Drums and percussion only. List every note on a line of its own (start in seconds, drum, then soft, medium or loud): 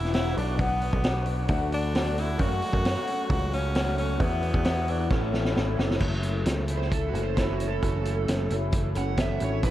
0.05 snare soft
0.14 snare loud
0.14 open hi-hat medium
0.26 snare soft
0.37 open hi-hat medium
0.59 kick loud
0.59 open hi-hat medium
0.81 open hi-hat medium
0.93 kick medium
1.04 snare loud
1.04 open hi-hat medium
1.26 open hi-hat medium
1.48 kick loud
1.48 open hi-hat medium
1.72 open hi-hat medium
1.95 snare loud
1.95 open hi-hat medium
2.18 open hi-hat medium
2.39 kick loud
2.39 open hi-hat medium
2.62 open hi-hat medium
2.73 kick medium
2.85 snare loud
2.85 open hi-hat loud
3.07 open hi-hat medium
3.30 kick loud
3.30 open hi-hat medium
3.53 open hi-hat medium
3.75 snare loud
3.75 open hi-hat medium
3.98 open hi-hat medium
4.20 kick loud
4.20 open hi-hat medium
4.43 open hi-hat medium
4.54 kick medium
4.64 snare loud
4.64 open hi-hat medium
4.88 open hi-hat medium
5.11 kick loud
5.11 snare medium
5.33 snare medium
5.45 snare medium
5.56 snare medium
5.79 snare medium
5.91 snare medium
6.00 kick medium
6.00 crash medium
6.23 closed hi-hat medium
6.46 snare loud
6.46 closed hi-hat medium
6.68 closed hi-hat medium
6.82 snare soft
6.92 kick loud
6.92 closed hi-hat loud
7.15 closed hi-hat medium
7.37 kick medium
7.37 snare loud
7.37 closed hi-hat medium
7.60 closed hi-hat medium
7.83 kick loud
7.83 closed hi-hat medium
8.05 closed hi-hat medium
8.28 snare loud
8.28 closed hi-hat loud
8.50 closed hi-hat medium
8.72 kick loud
8.72 closed hi-hat loud
8.95 closed hi-hat medium
9.17 kick medium
9.17 snare loud
9.17 closed hi-hat medium
9.40 closed hi-hat medium
9.63 kick medium
9.63 closed hi-hat medium